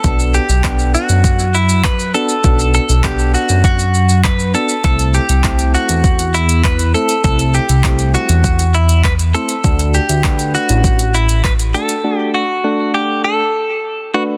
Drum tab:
HH |----------------|----------------|-x-x-x-x-x-x-x-x|-x-x-x-x-x-x-x-x|
SH |xxxxxxxxxxxxxxxx|xxxxxxxxxxxxxxxx|xxxxxxxxxxxxxxxx|xxxxxxxxxxxxxxxx|
CP |----x-------x---|----x-------x---|----x-------x---|----x-------x---|
BD |o---o---o---o---|o---o---o---o---|o---o---o---o---|o---o---o---o---|

HH |-x-x-x-x-x-x-x-x|----------------|
SH |xxxxxxxxxxxxxxxx|----------------|
CP |----x-------x---|----------------|
BD |o---o---o---o---|----------------|